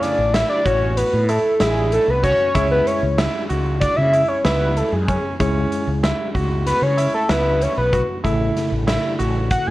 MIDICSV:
0, 0, Header, 1, 6, 480
1, 0, Start_track
1, 0, Tempo, 632911
1, 1935, Time_signature, 9, 3, 24, 8
1, 7360, End_track
2, 0, Start_track
2, 0, Title_t, "Analog synth lead"
2, 0, Program_c, 0, 81
2, 13, Note_on_c, 0, 74, 98
2, 252, Note_on_c, 0, 76, 99
2, 264, Note_off_c, 0, 74, 0
2, 368, Note_off_c, 0, 76, 0
2, 373, Note_on_c, 0, 74, 92
2, 492, Note_on_c, 0, 73, 108
2, 503, Note_off_c, 0, 74, 0
2, 733, Note_on_c, 0, 71, 90
2, 744, Note_off_c, 0, 73, 0
2, 977, Note_on_c, 0, 69, 80
2, 988, Note_off_c, 0, 71, 0
2, 1225, Note_on_c, 0, 68, 80
2, 1236, Note_off_c, 0, 69, 0
2, 1456, Note_off_c, 0, 68, 0
2, 1461, Note_on_c, 0, 69, 83
2, 1591, Note_on_c, 0, 71, 79
2, 1603, Note_off_c, 0, 69, 0
2, 1693, Note_off_c, 0, 71, 0
2, 1698, Note_on_c, 0, 73, 87
2, 2032, Note_off_c, 0, 73, 0
2, 2058, Note_on_c, 0, 71, 84
2, 2174, Note_on_c, 0, 73, 74
2, 2186, Note_off_c, 0, 71, 0
2, 2415, Note_off_c, 0, 73, 0
2, 2885, Note_on_c, 0, 74, 100
2, 3005, Note_on_c, 0, 76, 109
2, 3017, Note_off_c, 0, 74, 0
2, 3246, Note_on_c, 0, 73, 93
2, 3257, Note_off_c, 0, 76, 0
2, 3367, Note_on_c, 0, 71, 94
2, 3379, Note_off_c, 0, 73, 0
2, 3615, Note_on_c, 0, 69, 77
2, 3627, Note_off_c, 0, 71, 0
2, 3734, Note_on_c, 0, 68, 61
2, 3746, Note_off_c, 0, 69, 0
2, 3975, Note_off_c, 0, 68, 0
2, 5054, Note_on_c, 0, 71, 93
2, 5178, Note_on_c, 0, 73, 101
2, 5189, Note_off_c, 0, 71, 0
2, 5414, Note_off_c, 0, 73, 0
2, 5419, Note_on_c, 0, 69, 85
2, 5532, Note_on_c, 0, 71, 99
2, 5544, Note_off_c, 0, 69, 0
2, 5783, Note_on_c, 0, 73, 85
2, 5794, Note_off_c, 0, 71, 0
2, 5892, Note_off_c, 0, 73, 0
2, 5897, Note_on_c, 0, 71, 69
2, 6120, Note_off_c, 0, 71, 0
2, 7210, Note_on_c, 0, 78, 90
2, 7332, Note_on_c, 0, 80, 96
2, 7344, Note_off_c, 0, 78, 0
2, 7360, Note_off_c, 0, 80, 0
2, 7360, End_track
3, 0, Start_track
3, 0, Title_t, "Grand piano"
3, 0, Program_c, 1, 0
3, 0, Note_on_c, 1, 49, 79
3, 130, Note_off_c, 1, 49, 0
3, 258, Note_on_c, 1, 64, 73
3, 434, Note_off_c, 1, 64, 0
3, 495, Note_on_c, 1, 66, 78
3, 850, Note_off_c, 1, 66, 0
3, 976, Note_on_c, 1, 64, 70
3, 1153, Note_off_c, 1, 64, 0
3, 1215, Note_on_c, 1, 64, 79
3, 1570, Note_off_c, 1, 64, 0
3, 1691, Note_on_c, 1, 66, 78
3, 1870, Note_off_c, 1, 66, 0
3, 1932, Note_on_c, 1, 64, 92
3, 2288, Note_off_c, 1, 64, 0
3, 2412, Note_on_c, 1, 64, 84
3, 2591, Note_off_c, 1, 64, 0
3, 2650, Note_on_c, 1, 66, 72
3, 3007, Note_off_c, 1, 66, 0
3, 3131, Note_on_c, 1, 64, 61
3, 3310, Note_off_c, 1, 64, 0
3, 3372, Note_on_c, 1, 64, 85
3, 3728, Note_off_c, 1, 64, 0
3, 3853, Note_on_c, 1, 61, 71
3, 4031, Note_off_c, 1, 61, 0
3, 4097, Note_on_c, 1, 61, 82
3, 4451, Note_off_c, 1, 61, 0
3, 4575, Note_on_c, 1, 64, 73
3, 4752, Note_off_c, 1, 64, 0
3, 4812, Note_on_c, 1, 66, 73
3, 5168, Note_off_c, 1, 66, 0
3, 5291, Note_on_c, 1, 64, 72
3, 5470, Note_off_c, 1, 64, 0
3, 5531, Note_on_c, 1, 64, 77
3, 5887, Note_off_c, 1, 64, 0
3, 6012, Note_on_c, 1, 66, 70
3, 6191, Note_off_c, 1, 66, 0
3, 6247, Note_on_c, 1, 64, 74
3, 6605, Note_off_c, 1, 64, 0
3, 6728, Note_on_c, 1, 64, 68
3, 6908, Note_off_c, 1, 64, 0
3, 6968, Note_on_c, 1, 66, 67
3, 7326, Note_off_c, 1, 66, 0
3, 7360, End_track
4, 0, Start_track
4, 0, Title_t, "Tine electric piano"
4, 0, Program_c, 2, 4
4, 0, Note_on_c, 2, 57, 52
4, 0, Note_on_c, 2, 64, 57
4, 1905, Note_off_c, 2, 57, 0
4, 1907, Note_off_c, 2, 64, 0
4, 1935, Note_on_c, 2, 56, 59
4, 1935, Note_on_c, 2, 64, 56
4, 1936, Note_on_c, 2, 61, 58
4, 1940, Note_on_c, 2, 68, 67
4, 4065, Note_off_c, 2, 56, 0
4, 4065, Note_off_c, 2, 61, 0
4, 4065, Note_off_c, 2, 64, 0
4, 4068, Note_off_c, 2, 68, 0
4, 4093, Note_on_c, 2, 56, 68
4, 4093, Note_on_c, 2, 64, 66
4, 4094, Note_on_c, 2, 61, 60
4, 4095, Note_on_c, 2, 68, 75
4, 6224, Note_off_c, 2, 56, 0
4, 6224, Note_off_c, 2, 64, 0
4, 6225, Note_off_c, 2, 61, 0
4, 6225, Note_off_c, 2, 68, 0
4, 6249, Note_on_c, 2, 57, 68
4, 6250, Note_on_c, 2, 64, 66
4, 6251, Note_on_c, 2, 49, 65
4, 6255, Note_on_c, 2, 69, 79
4, 7360, Note_off_c, 2, 49, 0
4, 7360, Note_off_c, 2, 57, 0
4, 7360, Note_off_c, 2, 64, 0
4, 7360, Note_off_c, 2, 69, 0
4, 7360, End_track
5, 0, Start_track
5, 0, Title_t, "Fretless electric bass"
5, 0, Program_c, 3, 35
5, 139, Note_on_c, 3, 33, 74
5, 321, Note_off_c, 3, 33, 0
5, 498, Note_on_c, 3, 33, 80
5, 773, Note_off_c, 3, 33, 0
5, 858, Note_on_c, 3, 45, 88
5, 1041, Note_off_c, 3, 45, 0
5, 1217, Note_on_c, 3, 33, 82
5, 1492, Note_off_c, 3, 33, 0
5, 1577, Note_on_c, 3, 36, 78
5, 1760, Note_off_c, 3, 36, 0
5, 1938, Note_on_c, 3, 37, 88
5, 2121, Note_off_c, 3, 37, 0
5, 2296, Note_on_c, 3, 37, 89
5, 2480, Note_off_c, 3, 37, 0
5, 2657, Note_on_c, 3, 37, 81
5, 2933, Note_off_c, 3, 37, 0
5, 3018, Note_on_c, 3, 49, 85
5, 3201, Note_off_c, 3, 49, 0
5, 3375, Note_on_c, 3, 37, 87
5, 3651, Note_off_c, 3, 37, 0
5, 3735, Note_on_c, 3, 42, 79
5, 3919, Note_off_c, 3, 42, 0
5, 4098, Note_on_c, 3, 37, 91
5, 4281, Note_off_c, 3, 37, 0
5, 4453, Note_on_c, 3, 37, 89
5, 4638, Note_off_c, 3, 37, 0
5, 4817, Note_on_c, 3, 37, 80
5, 5092, Note_off_c, 3, 37, 0
5, 5171, Note_on_c, 3, 49, 82
5, 5357, Note_off_c, 3, 49, 0
5, 5533, Note_on_c, 3, 37, 78
5, 5810, Note_off_c, 3, 37, 0
5, 5897, Note_on_c, 3, 35, 85
5, 6081, Note_off_c, 3, 35, 0
5, 6255, Note_on_c, 3, 33, 85
5, 6439, Note_off_c, 3, 33, 0
5, 6612, Note_on_c, 3, 33, 82
5, 6798, Note_off_c, 3, 33, 0
5, 6976, Note_on_c, 3, 33, 84
5, 7252, Note_off_c, 3, 33, 0
5, 7360, End_track
6, 0, Start_track
6, 0, Title_t, "Drums"
6, 19, Note_on_c, 9, 38, 25
6, 19, Note_on_c, 9, 42, 58
6, 95, Note_off_c, 9, 38, 0
6, 95, Note_off_c, 9, 42, 0
6, 259, Note_on_c, 9, 38, 94
6, 259, Note_on_c, 9, 42, 76
6, 335, Note_off_c, 9, 38, 0
6, 335, Note_off_c, 9, 42, 0
6, 497, Note_on_c, 9, 36, 67
6, 498, Note_on_c, 9, 42, 60
6, 573, Note_off_c, 9, 36, 0
6, 574, Note_off_c, 9, 42, 0
6, 737, Note_on_c, 9, 42, 78
6, 812, Note_off_c, 9, 42, 0
6, 975, Note_on_c, 9, 42, 58
6, 1051, Note_off_c, 9, 42, 0
6, 1213, Note_on_c, 9, 38, 93
6, 1213, Note_on_c, 9, 42, 80
6, 1289, Note_off_c, 9, 38, 0
6, 1289, Note_off_c, 9, 42, 0
6, 1456, Note_on_c, 9, 42, 61
6, 1532, Note_off_c, 9, 42, 0
6, 1696, Note_on_c, 9, 36, 63
6, 1697, Note_on_c, 9, 42, 58
6, 1772, Note_off_c, 9, 36, 0
6, 1773, Note_off_c, 9, 42, 0
6, 1936, Note_on_c, 9, 36, 96
6, 1936, Note_on_c, 9, 42, 76
6, 2012, Note_off_c, 9, 36, 0
6, 2012, Note_off_c, 9, 42, 0
6, 2177, Note_on_c, 9, 42, 48
6, 2253, Note_off_c, 9, 42, 0
6, 2415, Note_on_c, 9, 38, 105
6, 2415, Note_on_c, 9, 42, 73
6, 2491, Note_off_c, 9, 38, 0
6, 2491, Note_off_c, 9, 42, 0
6, 2654, Note_on_c, 9, 42, 50
6, 2730, Note_off_c, 9, 42, 0
6, 2893, Note_on_c, 9, 38, 28
6, 2893, Note_on_c, 9, 42, 70
6, 2894, Note_on_c, 9, 36, 89
6, 2968, Note_off_c, 9, 38, 0
6, 2968, Note_off_c, 9, 42, 0
6, 2970, Note_off_c, 9, 36, 0
6, 3136, Note_on_c, 9, 42, 50
6, 3211, Note_off_c, 9, 42, 0
6, 3373, Note_on_c, 9, 38, 98
6, 3373, Note_on_c, 9, 42, 76
6, 3449, Note_off_c, 9, 38, 0
6, 3449, Note_off_c, 9, 42, 0
6, 3615, Note_on_c, 9, 42, 56
6, 3691, Note_off_c, 9, 42, 0
6, 3856, Note_on_c, 9, 36, 80
6, 3859, Note_on_c, 9, 42, 55
6, 3932, Note_off_c, 9, 36, 0
6, 3934, Note_off_c, 9, 42, 0
6, 4096, Note_on_c, 9, 36, 94
6, 4099, Note_on_c, 9, 42, 69
6, 4172, Note_off_c, 9, 36, 0
6, 4174, Note_off_c, 9, 42, 0
6, 4336, Note_on_c, 9, 42, 51
6, 4412, Note_off_c, 9, 42, 0
6, 4577, Note_on_c, 9, 38, 96
6, 4577, Note_on_c, 9, 42, 70
6, 4653, Note_off_c, 9, 38, 0
6, 4653, Note_off_c, 9, 42, 0
6, 4815, Note_on_c, 9, 36, 70
6, 4815, Note_on_c, 9, 42, 64
6, 4891, Note_off_c, 9, 36, 0
6, 4891, Note_off_c, 9, 42, 0
6, 5056, Note_on_c, 9, 38, 31
6, 5056, Note_on_c, 9, 42, 79
6, 5132, Note_off_c, 9, 38, 0
6, 5132, Note_off_c, 9, 42, 0
6, 5295, Note_on_c, 9, 42, 59
6, 5371, Note_off_c, 9, 42, 0
6, 5532, Note_on_c, 9, 38, 103
6, 5532, Note_on_c, 9, 42, 74
6, 5608, Note_off_c, 9, 38, 0
6, 5608, Note_off_c, 9, 42, 0
6, 5776, Note_on_c, 9, 42, 58
6, 5852, Note_off_c, 9, 42, 0
6, 6014, Note_on_c, 9, 36, 69
6, 6016, Note_on_c, 9, 42, 56
6, 6090, Note_off_c, 9, 36, 0
6, 6092, Note_off_c, 9, 42, 0
6, 6253, Note_on_c, 9, 36, 97
6, 6253, Note_on_c, 9, 42, 74
6, 6328, Note_off_c, 9, 42, 0
6, 6329, Note_off_c, 9, 36, 0
6, 6496, Note_on_c, 9, 38, 31
6, 6496, Note_on_c, 9, 42, 48
6, 6572, Note_off_c, 9, 38, 0
6, 6572, Note_off_c, 9, 42, 0
6, 6732, Note_on_c, 9, 38, 90
6, 6732, Note_on_c, 9, 42, 71
6, 6807, Note_off_c, 9, 38, 0
6, 6807, Note_off_c, 9, 42, 0
6, 6972, Note_on_c, 9, 42, 49
6, 7048, Note_off_c, 9, 42, 0
6, 7210, Note_on_c, 9, 42, 78
6, 7212, Note_on_c, 9, 36, 89
6, 7286, Note_off_c, 9, 42, 0
6, 7288, Note_off_c, 9, 36, 0
6, 7360, End_track
0, 0, End_of_file